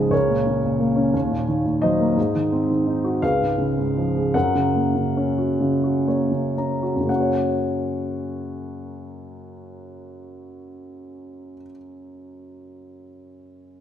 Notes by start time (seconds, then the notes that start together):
Already playing: C#2 G#2 C#3 F3 G#3 G#4 D#5
0.10 C#2 A#4 C#5
0.28 A#2
0.47 C#3
0.64 A#2
0.80 A#3
0.96 C#4
1.14 D#2
1.31 A#2
1.48 D#3
1.65 A#2
1.82 F#3 C5 D#5
2.01 A#3
2.17 G#2
2.35 D#3
2.52 C4
2.70 D#3
2.87 D#4
3.04 F#4
3.22 C#2 B4 F5
3.41 G#2
3.58 C#3
3.78 G#2
3.97 F3
4.16 G#3
4.34 F#2 A#4 F#5
4.55 C#3
4.75 A#3
4.95 C#3
5.17 C#4
5.38 F#4
5.61 C#3
5.84 F#4
6.07 A#3 C#5
6.31 C#3
6.58 C#4 A#5
6.83 F#4
6.96 F#2
7.01 C#3
7.06 A#3 F#5
7.10 C#4
7.15 F#4
7.20 C#5